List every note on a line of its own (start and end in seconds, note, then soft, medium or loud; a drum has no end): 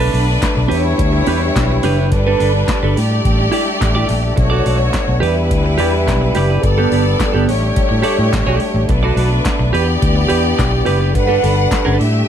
0.00 0.69 F#3 medium
0.00 0.70 A3 medium
0.00 2.10 B3 medium
0.00 0.69 D4 medium
0.00 2.09 D4 medium
0.00 0.11 D4 medium
0.00 0.12 A4 medium
0.00 0.13 B4 loud
0.00 0.69 B4 loud
0.12 0.36 B1 medium
0.12 0.25 D4 medium
0.12 0.25 A4 medium
0.12 0.26 B4 medium
0.12 open hi-hat medium
0.27 muted clean electric guitar stroke soft
0.42 kick medium
0.42 snare loud
0.42 clap medium
0.42 closed hi-hat medium
0.55 0.68 B1 medium
0.55 muted clean electric guitar stroke soft
0.68 0.93 E2 loud
0.68 2.11 E3 medium
0.68 2.09 G3 medium
0.68 0.84 D4 medium
0.68 2.10 E4 medium
0.68 0.84 G4 medium
0.68 2.11 G4 medium
0.68 0.82 B4 medium
0.68 2.09 C#5 medium
0.68 open hi-hat medium
0.84 muted clean electric guitar stroke soft
0.98 1.21 D2 medium
0.98 muted clean electric guitar stroke soft
0.98 kick loud
0.98 closed hi-hat medium
1.12 muted clean electric guitar stroke soft
1.26 1.49 E2 medium
1.26 1.42 D4 medium
1.26 1.42 G4 medium
1.26 1.41 B4 loud
1.26 open hi-hat medium
1.42 muted clean electric guitar stroke soft
1.56 1.78 B1 medium
1.56 muted clean electric guitar stroke soft
1.56 kick loud
1.56 snare loud
1.56 clap medium
1.56 closed hi-hat medium
1.70 muted clean electric guitar stroke soft
1.83 2.12 F#1 medium
1.83 1.98 D4 medium
1.83 1.98 G4 medium
1.83 1.97 B4 medium
1.83 snare soft
1.83 open hi-hat medium
1.98 2.11 D4 soft
1.98 2.10 G4 medium
1.98 2.09 B4 medium
2.12 2.34 G1 loud
2.12 2.95 G3 medium
2.12 4.35 G3 medium
2.12 2.95 D4 medium
2.12 9.70 D4 medium
2.12 2.96 A4 medium
2.12 2.96 B4 medium
2.12 2.95 B4 medium
2.12 muted clean electric guitar stroke soft
2.12 kick loud
2.12 closed hi-hat medium
2.27 2.39 D4 medium
2.27 2.40 A4 medium
2.27 2.41 B4 medium
2.40 2.63 G1 medium
2.40 2.51 D4 medium
2.40 2.52 A4 medium
2.40 2.52 B4 medium
2.40 open hi-hat medium
2.54 muted clean electric guitar stroke soft
2.68 muted clean electric guitar stroke soft
2.68 kick loud
2.68 snare loud
2.68 clap medium
2.68 closed hi-hat medium
2.83 2.94 G1 medium
2.83 2.98 D4 medium
2.83 2.98 A4 medium
2.83 2.97 B4 medium
2.96 3.19 A2 medium
2.96 4.35 A3 medium
2.96 5.20 A3 medium
2.96 4.35 G4 medium
2.96 4.35 D5 medium
2.96 muted clean electric guitar stroke soft
2.96 open hi-hat medium
3.12 muted clean electric guitar stroke soft
3.25 3.47 A1 medium
3.25 kick loud
3.25 closed hi-hat medium
3.39 muted clean electric guitar stroke soft
3.51 3.67 E4 medium
3.51 3.66 G4 medium
3.51 3.64 D5 medium
3.51 open hi-hat medium
3.66 muted clean electric guitar stroke soft
3.81 4.04 A1 medium
3.81 muted clean electric guitar stroke soft
3.81 kick loud
3.81 snare loud
3.81 clap medium
3.81 closed hi-hat medium
3.95 4.07 E4 medium
3.95 4.08 G4 medium
3.95 4.08 D5 medium
4.08 4.32 A#1 medium
4.08 muted clean electric guitar stroke soft
4.08 snare soft
4.08 open hi-hat medium
4.23 muted clean electric guitar stroke soft
4.36 4.60 B1 loud
4.36 5.21 A3 medium
4.36 6.61 B3 medium
4.36 5.21 F#4 medium
4.36 5.21 C#5 medium
4.36 muted clean electric guitar stroke soft
4.36 kick loud
4.36 closed hi-hat medium
4.50 4.64 F#4 medium
4.50 4.65 A4 medium
4.50 4.65 D5 medium
4.65 4.88 B1 medium
4.65 4.77 F#4 medium
4.65 4.77 A4 medium
4.65 4.78 D5 medium
4.65 open hi-hat medium
4.82 muted clean electric guitar stroke soft
4.93 kick medium
4.93 snare loud
4.93 clap medium
4.93 closed hi-hat medium
5.08 5.19 B1 medium
5.08 muted clean electric guitar stroke soft
5.20 5.51 E2 medium
5.20 6.62 E3 medium
5.20 6.61 G3 medium
5.20 6.61 E4 medium
5.20 5.36 G4 medium
5.20 6.62 G4 medium
5.20 5.36 B4 medium
5.20 6.61 B4 medium
5.20 5.35 D5 medium
5.20 open hi-hat medium
5.36 muted clean electric guitar stroke soft
5.50 5.80 D2 medium
5.50 muted clean electric guitar stroke soft
5.50 kick loud
5.50 closed hi-hat medium
5.65 muted clean electric guitar stroke soft
5.78 6.10 E2 medium
5.78 5.93 G4 medium
5.78 5.92 B4 loud
5.78 5.92 D5 medium
5.78 open hi-hat medium
5.93 muted clean electric guitar stroke soft
6.07 6.30 B1 medium
6.07 muted clean electric guitar stroke soft
6.07 kick loud
6.07 snare loud
6.07 clap loud
6.07 closed hi-hat medium
6.21 muted clean electric guitar stroke soft
6.35 6.58 F#1 medium
6.35 6.50 G4 medium
6.35 6.50 B4 medium
6.35 6.49 D5 medium
6.35 snare soft
6.35 open hi-hat medium
6.50 6.62 G4 soft
6.50 6.62 B4 soft
6.50 6.61 D5 soft
6.63 6.86 G1 loud
6.63 8.87 G3 medium
6.63 7.47 B3 medium
6.63 7.47 A4 medium
6.63 7.47 B4 medium
6.63 7.47 D5 medium
6.63 muted clean electric guitar stroke soft
6.63 kick loud
6.63 closed hi-hat medium
6.78 6.91 B3 medium
6.78 6.92 G4 medium
6.78 6.92 A4 medium
6.92 7.14 G1 medium
6.92 7.03 B3 medium
6.92 7.04 G4 medium
6.92 7.04 A4 medium
6.92 open hi-hat medium
7.07 muted clean electric guitar stroke soft
7.19 muted clean electric guitar stroke soft
7.19 kick medium
7.19 snare loud
7.19 clap medium
7.19 closed hi-hat medium
7.33 7.45 G1 medium
7.33 7.49 B3 medium
7.33 7.47 G4 medium
7.33 7.47 A4 medium
7.48 7.70 A1 medium
7.48 8.87 A3 medium
7.48 9.72 A3 medium
7.48 8.87 G4 medium
7.48 8.87 C#5 medium
7.48 muted clean electric guitar stroke soft
7.48 open hi-hat medium
7.61 muted clean electric guitar stroke soft
7.76 kick loud
7.76 closed hi-hat medium
7.89 8.02 A2 medium
7.89 muted clean electric guitar stroke soft
8.02 8.18 G4 medium
8.02 8.17 A4 medium
8.02 8.16 D5 medium
8.02 open hi-hat medium
8.17 8.30 A2 medium
8.17 muted clean electric guitar stroke soft
8.33 8.44 A1 medium
8.33 muted clean electric guitar stroke soft
8.33 kick loud
8.33 snare loud
8.33 clap loud
8.33 closed hi-hat medium
8.46 8.58 B1 medium
8.46 8.59 G4 medium
8.46 8.60 A4 medium
8.46 8.60 D5 medium
8.60 muted clean electric guitar stroke soft
8.60 open hi-hat medium
8.74 8.86 A1 medium
8.74 muted clean electric guitar stroke soft
8.89 9.11 B1 loud
8.89 9.72 F#3 medium
8.89 11.13 B3 medium
8.89 9.72 D4 medium
8.89 9.72 B4 medium
8.89 muted clean electric guitar stroke soft
8.89 kick loud
8.89 closed hi-hat medium
9.03 9.16 F#4 medium
9.03 9.17 A4 medium
9.03 9.17 D5 medium
9.16 9.39 B1 loud
9.16 9.28 F#4 medium
9.16 9.29 A4 medium
9.16 9.30 D5 medium
9.16 open hi-hat medium
9.32 muted clean electric guitar stroke medium
9.45 kick loud
9.45 snare loud
9.45 clap medium
9.45 closed hi-hat medium
9.59 9.70 B1 medium
9.59 muted clean electric guitar stroke medium
9.73 9.96 E2 medium
9.73 11.13 E3 medium
9.73 11.12 B3 medium
9.73 12.28 D4 medium
9.73 9.88 G4 medium
9.73 11.13 G4 medium
9.73 11.12 G4 medium
9.73 9.87 B4 medium
9.73 11.12 D5 loud
9.73 9.86 D5 medium
9.73 open hi-hat medium
9.87 muted clean electric guitar stroke soft
10.01 10.24 D2 medium
10.01 muted clean electric guitar stroke soft
10.01 kick loud
10.01 closed hi-hat medium
10.16 muted clean electric guitar stroke soft
10.29 10.52 E2 medium
10.29 10.44 G4 medium
10.29 10.44 B4 medium
10.29 10.43 D5 medium
10.29 open hi-hat medium
10.44 muted clean electric guitar stroke soft
10.58 10.81 B1 medium
10.58 muted clean electric guitar stroke soft
10.58 kick loud
10.58 snare loud
10.58 clap medium
10.58 closed hi-hat medium
10.71 muted clean electric guitar stroke soft
10.85 11.15 F#1 medium
10.85 11.00 G4 medium
10.85 10.99 B4 medium
10.85 10.98 D5 medium
10.85 snare soft
10.85 open hi-hat medium
10.99 11.12 G4 soft
10.99 11.12 B4 medium
10.99 11.11 D5 medium
11.15 11.37 G1 loud
11.15 11.99 G3 medium
11.15 11.98 D4 medium
11.15 11.99 A4 medium
11.15 11.99 B4 medium
11.15 11.98 B4 medium
11.15 11.99 F#5 medium
11.15 muted clean electric guitar stroke soft
11.15 kick loud
11.15 closed hi-hat medium
11.27 11.41 D4 medium
11.27 11.42 A4 medium
11.27 11.43 B4 medium
11.42 11.66 G1 loud
11.42 11.54 D4 soft
11.42 11.55 A4 medium
11.42 11.55 B4 medium
11.42 open hi-hat medium
11.57 muted clean electric guitar stroke soft
11.71 muted clean electric guitar stroke soft
11.71 kick medium
11.71 snare loud
11.71 clap medium
11.71 closed hi-hat medium
11.85 11.97 G1 medium
11.85 12.06 D4 medium
11.85 11.99 A4 medium
11.85 11.99 B4 medium
11.99 12.22 A2 medium
11.99 12.28 G3 medium
11.99 12.28 A3 medium
11.99 12.28 G4 medium
11.99 12.28 E5 medium
11.99 muted clean electric guitar stroke soft
11.99 open hi-hat medium
12.13 muted clean electric guitar stroke soft